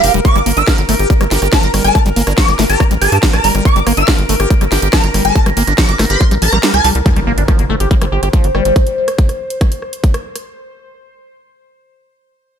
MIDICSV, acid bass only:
0, 0, Header, 1, 2, 480
1, 0, Start_track
1, 0, Key_signature, -2, "minor"
1, 0, Tempo, 425532
1, 281, Time_signature, 4, 2, 24, 8
1, 14206, End_track
2, 0, Start_track
2, 0, Title_t, "Acid bass"
2, 0, Program_c, 0, 38
2, 41, Note_on_c, 0, 67, 81
2, 144, Note_off_c, 0, 67, 0
2, 161, Note_on_c, 0, 55, 103
2, 230, Note_off_c, 0, 55, 0
2, 281, Note_on_c, 0, 55, 105
2, 322, Note_off_c, 0, 55, 0
2, 400, Note_on_c, 0, 55, 106
2, 442, Note_off_c, 0, 55, 0
2, 521, Note_on_c, 0, 58, 100
2, 590, Note_off_c, 0, 58, 0
2, 641, Note_on_c, 0, 62, 78
2, 710, Note_off_c, 0, 62, 0
2, 761, Note_on_c, 0, 53, 86
2, 881, Note_on_c, 0, 55, 77
2, 898, Note_off_c, 0, 53, 0
2, 922, Note_off_c, 0, 55, 0
2, 1001, Note_on_c, 0, 57, 107
2, 1070, Note_off_c, 0, 57, 0
2, 1121, Note_on_c, 0, 67, 80
2, 1225, Note_off_c, 0, 67, 0
2, 1241, Note_on_c, 0, 55, 102
2, 1283, Note_off_c, 0, 55, 0
2, 1362, Note_on_c, 0, 55, 109
2, 1403, Note_off_c, 0, 55, 0
2, 1482, Note_on_c, 0, 67, 77
2, 1585, Note_off_c, 0, 67, 0
2, 1602, Note_on_c, 0, 67, 75
2, 1670, Note_off_c, 0, 67, 0
2, 1721, Note_on_c, 0, 53, 81
2, 1841, Note_on_c, 0, 55, 79
2, 1858, Note_off_c, 0, 53, 0
2, 1882, Note_off_c, 0, 55, 0
2, 1961, Note_on_c, 0, 55, 77
2, 2064, Note_off_c, 0, 55, 0
2, 2081, Note_on_c, 0, 55, 76
2, 2184, Note_off_c, 0, 55, 0
2, 2201, Note_on_c, 0, 55, 103
2, 2242, Note_off_c, 0, 55, 0
2, 2321, Note_on_c, 0, 55, 106
2, 2362, Note_off_c, 0, 55, 0
2, 2441, Note_on_c, 0, 58, 100
2, 2510, Note_off_c, 0, 58, 0
2, 2561, Note_on_c, 0, 62, 76
2, 2630, Note_off_c, 0, 62, 0
2, 2681, Note_on_c, 0, 53, 85
2, 2801, Note_on_c, 0, 55, 76
2, 2818, Note_off_c, 0, 53, 0
2, 2842, Note_off_c, 0, 55, 0
2, 2921, Note_on_c, 0, 57, 102
2, 2990, Note_off_c, 0, 57, 0
2, 3041, Note_on_c, 0, 67, 82
2, 3144, Note_off_c, 0, 67, 0
2, 3161, Note_on_c, 0, 55, 101
2, 3202, Note_off_c, 0, 55, 0
2, 3281, Note_on_c, 0, 55, 103
2, 3322, Note_off_c, 0, 55, 0
2, 3401, Note_on_c, 0, 67, 77
2, 3504, Note_off_c, 0, 67, 0
2, 3522, Note_on_c, 0, 67, 80
2, 3590, Note_off_c, 0, 67, 0
2, 3641, Note_on_c, 0, 53, 81
2, 3761, Note_on_c, 0, 55, 75
2, 3778, Note_off_c, 0, 53, 0
2, 3802, Note_off_c, 0, 55, 0
2, 3881, Note_on_c, 0, 55, 79
2, 3985, Note_off_c, 0, 55, 0
2, 4001, Note_on_c, 0, 55, 81
2, 4104, Note_off_c, 0, 55, 0
2, 4121, Note_on_c, 0, 55, 107
2, 4162, Note_off_c, 0, 55, 0
2, 4241, Note_on_c, 0, 55, 100
2, 4282, Note_off_c, 0, 55, 0
2, 4361, Note_on_c, 0, 58, 98
2, 4430, Note_off_c, 0, 58, 0
2, 4481, Note_on_c, 0, 62, 81
2, 4550, Note_off_c, 0, 62, 0
2, 4601, Note_on_c, 0, 53, 88
2, 4721, Note_on_c, 0, 55, 76
2, 4738, Note_off_c, 0, 53, 0
2, 4762, Note_off_c, 0, 55, 0
2, 4841, Note_on_c, 0, 57, 112
2, 4910, Note_off_c, 0, 57, 0
2, 4961, Note_on_c, 0, 67, 79
2, 5064, Note_off_c, 0, 67, 0
2, 5081, Note_on_c, 0, 55, 98
2, 5122, Note_off_c, 0, 55, 0
2, 5201, Note_on_c, 0, 55, 104
2, 5242, Note_off_c, 0, 55, 0
2, 5322, Note_on_c, 0, 67, 77
2, 5425, Note_off_c, 0, 67, 0
2, 5442, Note_on_c, 0, 67, 77
2, 5510, Note_off_c, 0, 67, 0
2, 5562, Note_on_c, 0, 53, 87
2, 5682, Note_on_c, 0, 55, 77
2, 5699, Note_off_c, 0, 53, 0
2, 5723, Note_off_c, 0, 55, 0
2, 5801, Note_on_c, 0, 55, 79
2, 5905, Note_off_c, 0, 55, 0
2, 5921, Note_on_c, 0, 55, 79
2, 6025, Note_off_c, 0, 55, 0
2, 6042, Note_on_c, 0, 55, 100
2, 6083, Note_off_c, 0, 55, 0
2, 6161, Note_on_c, 0, 55, 102
2, 6202, Note_off_c, 0, 55, 0
2, 6281, Note_on_c, 0, 58, 99
2, 6350, Note_off_c, 0, 58, 0
2, 6401, Note_on_c, 0, 62, 75
2, 6470, Note_off_c, 0, 62, 0
2, 6521, Note_on_c, 0, 53, 85
2, 6641, Note_on_c, 0, 55, 79
2, 6658, Note_off_c, 0, 53, 0
2, 6683, Note_off_c, 0, 55, 0
2, 6762, Note_on_c, 0, 57, 109
2, 6830, Note_off_c, 0, 57, 0
2, 6881, Note_on_c, 0, 67, 84
2, 6984, Note_off_c, 0, 67, 0
2, 7001, Note_on_c, 0, 55, 104
2, 7042, Note_off_c, 0, 55, 0
2, 7121, Note_on_c, 0, 55, 101
2, 7162, Note_off_c, 0, 55, 0
2, 7241, Note_on_c, 0, 53, 77
2, 7283, Note_off_c, 0, 53, 0
2, 7361, Note_on_c, 0, 55, 78
2, 7430, Note_off_c, 0, 55, 0
2, 7481, Note_on_c, 0, 55, 85
2, 7584, Note_off_c, 0, 55, 0
2, 7601, Note_on_c, 0, 55, 81
2, 7642, Note_off_c, 0, 55, 0
2, 7721, Note_on_c, 0, 55, 104
2, 7824, Note_off_c, 0, 55, 0
2, 7841, Note_on_c, 0, 55, 80
2, 7882, Note_off_c, 0, 55, 0
2, 7961, Note_on_c, 0, 55, 103
2, 8002, Note_off_c, 0, 55, 0
2, 8081, Note_on_c, 0, 55, 103
2, 8122, Note_off_c, 0, 55, 0
2, 8201, Note_on_c, 0, 58, 98
2, 8270, Note_off_c, 0, 58, 0
2, 8321, Note_on_c, 0, 62, 78
2, 8390, Note_off_c, 0, 62, 0
2, 8441, Note_on_c, 0, 53, 81
2, 8562, Note_on_c, 0, 55, 79
2, 8578, Note_off_c, 0, 53, 0
2, 8603, Note_off_c, 0, 55, 0
2, 8681, Note_on_c, 0, 57, 105
2, 8750, Note_off_c, 0, 57, 0
2, 8801, Note_on_c, 0, 67, 80
2, 8904, Note_off_c, 0, 67, 0
2, 8921, Note_on_c, 0, 55, 103
2, 8962, Note_off_c, 0, 55, 0
2, 9041, Note_on_c, 0, 55, 98
2, 9082, Note_off_c, 0, 55, 0
2, 9161, Note_on_c, 0, 67, 72
2, 9264, Note_off_c, 0, 67, 0
2, 9281, Note_on_c, 0, 67, 81
2, 9350, Note_off_c, 0, 67, 0
2, 9401, Note_on_c, 0, 53, 78
2, 9521, Note_on_c, 0, 55, 74
2, 9538, Note_off_c, 0, 53, 0
2, 9563, Note_off_c, 0, 55, 0
2, 9641, Note_on_c, 0, 55, 78
2, 9744, Note_off_c, 0, 55, 0
2, 9760, Note_on_c, 0, 55, 82
2, 9864, Note_off_c, 0, 55, 0
2, 14206, End_track
0, 0, End_of_file